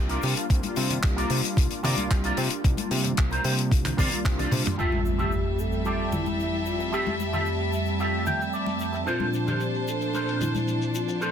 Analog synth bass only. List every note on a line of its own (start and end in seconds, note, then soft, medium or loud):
0.00 0.18 C2 loud
0.23 0.34 C3 loud
0.50 0.61 C2 loud
0.77 0.99 C3 medium
1.04 1.25 C2 medium
1.30 1.41 C3 loud
1.57 1.68 C2 medium
1.84 1.95 C3 loud
1.98 2.08 C2 soft
2.11 2.32 C2 loud
2.38 2.48 C3 loud
2.64 2.75 C2 loud
2.91 3.13 C3 medium
3.18 3.40 C2 medium
3.45 3.73 C3 loud
3.72 3.93 C2 medium
3.98 4.09 C3 medium
4.12 4.23 C2 soft
4.25 4.47 C2 loud
4.52 4.63 C3 loud